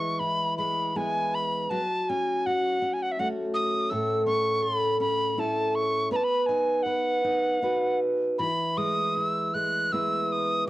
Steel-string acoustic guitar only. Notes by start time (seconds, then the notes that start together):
Already playing: E3 G#3 E4
0.20 E4
0.58 G#3
0.96 G#3 B3 E4
1.71 F#3 F#4
2.09 C#4
2.47 F#4
2.82 C#4
3.19 A3 C#4 F#4
3.91 A2 A4
4.26 C#4
4.63 A4
5.00 C#4
5.38 C#4 E4 A4
6.11 B3 B4
6.49 D#4
6.86 B4
7.24 D#4
7.62 D#4 F#4 B4
8.39 E3 E4
8.77 G#3
9.17 E4
9.55 G#3
9.93 G#3 B3 E4